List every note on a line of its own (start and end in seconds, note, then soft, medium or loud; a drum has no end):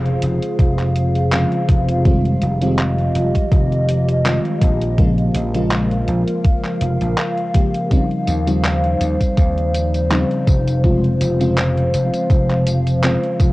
0.00 0.16 F1 loud
0.00 1.32 C#3 medium
0.00 1.32 F3 medium
0.00 1.32 G#3 medium
0.00 1.33 C4 medium
0.00 1.33 F4 loud
0.00 2.02 G#4 medium
0.00 2.02 C5 medium
0.00 4.94 F5 loud
0.06 closed hi-hat soft
0.22 0.37 F1 medium
0.22 closed hi-hat loud
0.42 closed hi-hat medium
0.59 1.44 F1 loud
0.59 kick loud
0.59 closed hi-hat medium
0.79 clap soft
0.79 closed hi-hat soft
0.96 closed hi-hat medium
1.15 closed hi-hat medium
1.32 2.01 C#3 medium
1.32 2.01 F3 medium
1.32 2.02 G#3 medium
1.32 2.02 C4 medium
1.32 2.02 F4 loud
1.32 clap loud
1.32 closed hi-hat medium
1.52 closed hi-hat soft
1.69 2.35 F1 medium
1.69 kick loud
1.69 closed hi-hat medium
1.89 closed hi-hat medium
2.05 2.57 D#3 medium
2.05 7.87 F3 medium
2.05 2.57 G3 medium
2.05 2.57 G#3 medium
2.05 2.58 C4 medium
2.05 2.58 F4 loud
2.05 4.96 G4 medium
2.05 4.96 D#5 medium
2.05 kick loud
2.05 closed hi-hat medium
2.25 closed hi-hat soft
2.42 3.09 F1 loud
2.42 closed hi-hat loud
2.61 2.75 D#3 medium
2.61 2.75 G3 medium
2.61 2.75 G#3 medium
2.61 2.75 C4 medium
2.61 2.76 F4 loud
2.61 closed hi-hat medium
2.79 clap loud
2.79 closed hi-hat medium
2.98 closed hi-hat soft
3.15 3.30 F1 loud
3.15 closed hi-hat medium
3.35 kick medium
3.35 closed hi-hat medium
3.52 4.37 F1 loud
3.52 kick loud
3.52 closed hi-hat medium
3.72 closed hi-hat soft
3.89 closed hi-hat medium
4.09 closed hi-hat medium
4.24 4.94 D#3 medium
4.24 4.94 G3 medium
4.24 4.94 G#3 medium
4.24 4.94 C4 medium
4.24 4.95 F4 loud
4.24 clap loud
4.24 closed hi-hat medium
4.45 closed hi-hat soft
4.61 5.28 A#1 medium
4.61 kick loud
4.61 closed hi-hat medium
4.82 closed hi-hat soft
4.98 5.50 C#3 medium
4.98 5.50 F3 medium
4.98 5.50 G#3 medium
4.98 5.50 A#3 medium
4.98 5.51 F4 loud
4.98 7.88 A#4 medium
4.98 10.80 F5 loud
4.98 kick loud
4.98 closed hi-hat medium
5.18 closed hi-hat soft
5.35 6.01 A#1 loud
5.35 closed hi-hat loud
5.54 5.68 C#3 medium
5.54 5.68 F3 medium
5.54 5.68 G#3 medium
5.54 5.68 A#3 medium
5.54 5.69 F4 loud
5.54 closed hi-hat medium
5.71 clap loud
5.71 closed hi-hat medium
5.91 closed hi-hat soft
6.08 6.23 A#1 medium
6.08 closed hi-hat medium
6.28 closed hi-hat soft
6.45 kick loud
6.45 closed hi-hat medium
6.64 clap soft
6.64 closed hi-hat soft
6.81 6.96 F1 medium
6.81 closed hi-hat medium
7.01 7.14 A#1 medium
7.01 closed hi-hat medium
7.18 clap loud
7.18 closed hi-hat medium
7.38 closed hi-hat soft
7.54 7.87 C#3 medium
7.54 7.87 F3 medium
7.54 7.87 G#3 medium
7.54 7.87 A#3 medium
7.54 7.87 G4 medium
7.54 kick loud
7.54 closed hi-hat medium
7.74 closed hi-hat soft
7.91 8.43 C#3 medium
7.91 8.43 F3 medium
7.91 10.81 G3 medium
7.91 8.43 G3 medium
7.91 8.43 C4 medium
7.91 8.43 D#4 loud
7.91 13.53 C5 medium
7.91 kick loud
7.91 closed hi-hat soft
7.91 tambourine soft
8.11 closed hi-hat soft
8.27 8.94 D#2 loud
8.27 closed hi-hat medium
8.27 tambourine medium
8.46 8.60 C#3 medium
8.46 8.60 F3 medium
8.46 8.61 G3 medium
8.46 8.61 C4 medium
8.46 8.61 D#4 loud
8.46 closed hi-hat medium
8.46 tambourine soft
8.64 clap loud
8.64 closed hi-hat soft
8.64 tambourine soft
8.84 closed hi-hat soft
9.01 9.15 D#2 medium
9.01 closed hi-hat medium
9.01 tambourine medium
9.21 kick medium
9.21 closed hi-hat medium
9.21 tambourine soft
9.37 10.22 D#2 loud
9.37 kick loud
9.37 closed hi-hat soft
9.37 tambourine soft
9.58 closed hi-hat soft
9.74 closed hi-hat medium
9.74 tambourine medium
9.94 closed hi-hat soft
9.94 tambourine soft
10.10 10.79 C#3 medium
10.10 10.79 F3 medium
10.10 10.79 G3 medium
10.10 10.80 C4 medium
10.10 10.80 D#4 loud
10.10 clap loud
10.10 closed hi-hat medium
10.10 tambourine soft
10.31 closed hi-hat soft
10.47 11.13 F1 medium
10.47 kick loud
10.47 closed hi-hat medium
10.47 tambourine medium
10.67 closed hi-hat soft
10.67 tambourine soft
10.83 11.35 C#3 medium
10.83 11.35 F3 medium
10.83 13.53 F3 medium
10.83 11.36 G#3 medium
10.83 11.36 C4 medium
10.83 11.36 F4 loud
10.83 13.53 F5 loud
10.83 kick loud
10.83 closed hi-hat soft
10.83 tambourine soft
11.04 closed hi-hat soft
11.20 11.87 F1 loud
11.20 closed hi-hat medium
11.20 tambourine medium
11.39 11.53 C#3 medium
11.39 11.53 F3 medium
11.39 11.53 G#3 medium
11.39 11.53 C4 medium
11.39 11.54 F4 loud
11.39 closed hi-hat soft
11.39 tambourine soft
11.57 clap loud
11.57 closed hi-hat soft
11.57 tambourine soft
11.77 closed hi-hat soft
11.93 12.08 F1 medium
11.93 closed hi-hat medium
11.93 tambourine medium
12.13 closed hi-hat soft
12.13 tambourine soft
12.30 13.15 F1 loud
12.30 kick loud
12.30 closed hi-hat soft
12.30 tambourine soft
12.50 clap soft
12.50 closed hi-hat soft
12.67 closed hi-hat medium
12.67 tambourine medium
12.87 closed hi-hat soft
12.87 tambourine soft
13.02 13.53 C#3 medium
13.02 13.53 F3 medium
13.02 13.53 G#3 medium
13.02 13.53 C4 medium
13.02 13.53 F4 loud
13.02 clap loud
13.02 closed hi-hat medium
13.02 tambourine soft
13.23 closed hi-hat soft
13.39 13.53 F1 medium
13.39 kick loud
13.39 closed hi-hat medium
13.39 tambourine medium